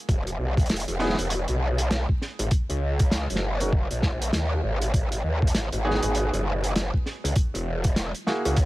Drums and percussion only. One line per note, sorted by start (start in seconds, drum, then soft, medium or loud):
0.09 kick loud
0.09 closed hi-hat medium
0.27 closed hi-hat soft
0.57 kick loud
0.57 closed hi-hat soft
0.60 closed hi-hat soft
0.66 closed hi-hat soft
0.70 snare loud
0.70 closed hi-hat medium
0.76 closed hi-hat medium
0.80 closed hi-hat medium
0.88 closed hi-hat soft
0.99 snare soft
1.05 snare soft
1.09 snare soft
1.14 snare soft
1.19 closed hi-hat medium
1.30 closed hi-hat medium
1.48 closed hi-hat soft
1.78 closed hi-hat medium
1.91 snare loud
1.91 closed hi-hat medium
2.09 kick medium
2.22 snare soft
2.39 closed hi-hat medium
2.51 kick loud
2.51 closed hi-hat medium
2.70 closed hi-hat soft
2.99 kick loud
2.99 closed hi-hat medium
3.11 snare loud
3.11 closed hi-hat medium
3.30 closed hi-hat soft
3.35 snare medium
3.61 closed hi-hat medium
3.73 kick loud
3.91 closed hi-hat medium
4.03 kick medium
4.03 snare medium
4.22 closed hi-hat medium
4.33 snare loud
4.33 closed hi-hat medium
4.82 closed hi-hat medium
4.94 kick loud
4.94 closed hi-hat medium
5.12 closed hi-hat medium
5.42 kick loud
5.47 closed hi-hat medium
5.55 snare loud
5.55 closed hi-hat medium
5.72 closed hi-hat soft
5.91 snare soft
5.95 snare soft
6.03 closed hi-hat medium
6.15 closed hi-hat medium
6.34 closed hi-hat medium
6.64 closed hi-hat medium
6.76 snare loud
6.76 closed hi-hat medium
6.94 kick medium
7.06 snare soft
7.25 closed hi-hat medium
7.36 kick loud
7.36 closed hi-hat medium
7.55 closed hi-hat medium
7.84 kick medium
7.84 closed hi-hat medium
7.96 snare loud
7.96 closed hi-hat medium
8.15 closed hi-hat soft
8.26 snare medium
8.26 snare soft
8.45 closed hi-hat medium
8.56 kick loud
8.56 closed hi-hat medium